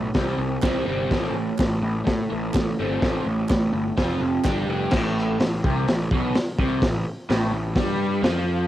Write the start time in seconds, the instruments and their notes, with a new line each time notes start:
Already playing: overdriven electric guitar A2 A3
0.14 picked electric bass C2, overdriven electric guitar C3 G3 C4, kick, snare, open hi-hat
0.38 picked electric bass C2, overdriven electric guitar C3 G3
0.62 picked electric bass C2, overdriven electric guitar C3 G3 C4, kick, snare, clap, open hi-hat
0.85 picked electric bass G1, overdriven electric guitar C3 G3 C4
1.11 picked electric bass A1, overdriven electric guitar A2 A3 C4, kick, snare, open hi-hat
1.32 picked electric bass A1, overdriven electric guitar A2 A3
1.59 picked electric bass A1, overdriven electric guitar A2 A3, kick, snare, clap, open hi-hat
1.81 picked electric bass A1, overdriven electric guitar A2 A3
2.04 overdriven electric guitar A2 A3, picked electric bass A2, kick, snare, open hi-hat
2.29 picked electric bass A1, overdriven electric guitar A2 A3
2.53 picked electric bass A1, overdriven electric guitar A2 A3, kick, snare, clap, open hi-hat
2.79 picked electric bass G1, overdriven electric guitar A2 A3 C4
3.01 picked electric bass A1, overdriven electric guitar A2 A3 C4, kick, snare, open hi-hat
3.26 picked electric bass A1, overdriven electric guitar A2 A3
3.49 picked electric bass A1, overdriven electric guitar A2 A3, kick, snare, clap, open hi-hat
3.73 picked electric bass G1, overdriven electric guitar A2 A3
3.97 picked electric bass F1, overdriven electric guitar F3 C4 F4, kick, snare, open hi-hat
4.20 picked electric bass F1, overdriven electric guitar F3 C4
4.44 picked electric bass G1, overdriven electric guitar G3 D4 G4, kick, snare, clap, open hi-hat
4.67 picked electric bass F1, overdriven electric guitar G3 D4
4.71 overdriven electric guitar G4
4.91 picked electric bass A1, overdriven electric guitar A2, kick, snare, crash
5.40 picked electric bass A1, overdriven electric guitar A2, snare, open hi-hat
5.64 picked electric bass C2, overdriven electric guitar C3, kick
5.88 picked electric bass A1, overdriven electric guitar A2, snare, open hi-hat
6.11 picked electric bass B1, overdriven electric guitar B2, kick
6.35 muted picked electric bass stroke, muted overdriven electric guitar stroke, snare, open hi-hat
6.59 picked electric bass C2, overdriven electric guitar C3, kick
6.82 picked electric bass A1, overdriven electric guitar A2, kick, snare, open hi-hat
7.29 picked electric bass A1, overdriven electric guitar A2, snare, open hi-hat
7.53 picked electric bass A1, overdriven electric guitar A2
7.75 picked electric bass G2, overdriven electric guitar G3, kick, snare, open hi-hat
8.22 picked electric bass F2, overdriven electric guitar F3, snare, open hi-hat